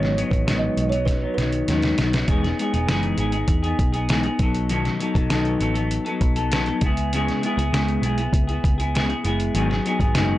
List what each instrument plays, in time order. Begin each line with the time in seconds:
Already playing: picked electric bass G#1, clean electric guitar G#2 D#3 F#3 B3 D#4
0.03 snare
0.17 clean electric guitar D#3 F#3 B3 D#4, closed hi-hat
0.31 picked electric bass A1, kalimba B4, kick, closed hi-hat
0.46 clean electric guitar G#2 D#3 F#3 B3 D#4, snare, closed hi-hat
0.59 kalimba D#5
0.77 picked electric bass B1, closed hi-hat
0.89 clean electric guitar D#4, kalimba C#5, closed hi-hat
0.94 clean electric guitar F#3 B3
1.05 kalimba B4, kick, snare, closed hi-hat
1.22 clean electric guitar F#3 B3 D#4
1.34 picked electric bass B1, clean electric guitar D#3, kalimba B4, closed hi-hat
1.38 clean electric guitar F#3 B3 D#4, snare
1.52 closed hi-hat
1.68 picked electric bass D#2, clean electric guitar G#2 D#3 F#3 B3 D#4, snare, closed hi-hat
1.82 snare, closed hi-hat
1.98 picked electric bass B1, clean electric guitar D#3 F#3 B3, snare, closed hi-hat
2.02 clean electric guitar D#4
2.13 clean electric guitar F#3 B3 D#4, snare, closed hi-hat
2.28 picked electric bass E1, clean electric guitar E3 G#3 B3 D#4 G#4, kick, closed hi-hat
2.43 clean electric guitar B3 D#4 G#4, snare, closed hi-hat
2.59 clean electric guitar G#3 B3 D#4 G#4, closed hi-hat
2.73 picked electric bass E1, clean electric guitar B3 D#4 G#4, closed hi-hat
2.88 picked electric bass F#1, clean electric guitar E3 G#3 B3 D#4 G#4, snare, closed hi-hat
3.03 closed hi-hat
3.17 picked electric bass G#1, clean electric guitar G#3 B3 D#4 G#4, closed hi-hat
3.32 clean electric guitar B3 D#4 G#4, closed hi-hat
3.48 picked electric bass E2, kick, closed hi-hat
3.63 clean electric guitar B3 D#4 G#4, closed hi-hat
3.79 picked electric bass B1, kick, closed hi-hat
3.93 clean electric guitar B3 D#4 G#4, closed hi-hat
4.09 clean electric guitar E3 G#3 B3 D#4 G#4, snare, closed hi-hat
4.23 clean electric guitar D#4 G#4, closed hi-hat
4.28 clean electric guitar B3
4.39 picked electric bass B1, clean electric guitar F#3 B3 D#4 A4, kick, closed hi-hat
4.55 closed hi-hat
4.69 clean electric guitar B2 D#3 F#3 B3 D#4 A4, closed hi-hat
4.85 snare, closed hi-hat
4.99 clean electric guitar F#3 B3 D#4 A4, closed hi-hat
5.14 picked electric bass B1, clean electric guitar F#3 B3 D#4 A4, kick, closed hi-hat
5.29 picked electric bass B1, clean electric guitar B2 D#3 F#3 B3 D#4 A4, snare, closed hi-hat
5.45 closed hi-hat
5.59 picked electric bass A1, clean electric guitar F#3 B3 D#4 A4, closed hi-hat
5.74 clean electric guitar F#3 B3 D#4 A4, closed hi-hat
5.91 closed hi-hat
6.05 clean electric guitar F#3 B3 D#4 A4, closed hi-hat
6.21 picked electric bass B1, kick, closed hi-hat
6.36 clean electric guitar F#3 B3 D#4 A4, closed hi-hat
6.51 clean electric guitar B2 D#3 F#3 B3 D#4 A4, snare, closed hi-hat
6.66 clean electric guitar B3 D#4 A4, closed hi-hat
6.71 clean electric guitar F#3
6.81 picked electric bass C#2, clean electric guitar G#3 B3 E4, kick, closed hi-hat
6.86 clean electric guitar G#4
6.97 closed hi-hat
7.13 clean electric guitar C#3 G#3 B3 E4 G#4, closed hi-hat
7.28 snare, closed hi-hat
7.43 clean electric guitar G#3 B3 E4 G#4, closed hi-hat
7.57 picked electric bass C#2, clean electric guitar B3 E4 G#4, closed hi-hat
7.72 picked electric bass C#2, clean electric guitar C#3 G#3 B3 E4 G#4, snare, closed hi-hat
7.88 closed hi-hat
8.02 picked electric bass B1, clean electric guitar G#3 B3 E4 G#4, closed hi-hat
8.18 clean electric guitar B3 E4 G#4, closed hi-hat
8.33 picked electric bass C#2, kick, closed hi-hat
8.47 clean electric guitar B3 E4 G#4, closed hi-hat
8.64 picked electric bass C#2, kick, closed hi-hat
8.78 clean electric guitar B3 E4 G#4, closed hi-hat
8.95 clean electric guitar C#3 G#3 B3 E4 G#4, snare, closed hi-hat
9.09 clean electric guitar B3 E4 G#4, closed hi-hat
9.24 picked electric bass F#1, clean electric guitar G#3 B3 E4 G#4, closed hi-hat
9.40 closed hi-hat
9.54 picked electric bass G#1, clean electric guitar G#2 D#3 F#3 B3 D#4 G#4, closed hi-hat
9.69 clean electric guitar F#3 B3 D#4 G#4, snare
9.84 clean electric guitar F#3 B3 D#4 G#4, closed hi-hat
9.99 picked electric bass G#1, clean electric guitar F#3 B3 D#4 G#4, kick, closed hi-hat
10.14 picked electric bass F#1, clean electric guitar G#2 D#3 F#3 B3 D#4 G#4, snare, closed hi-hat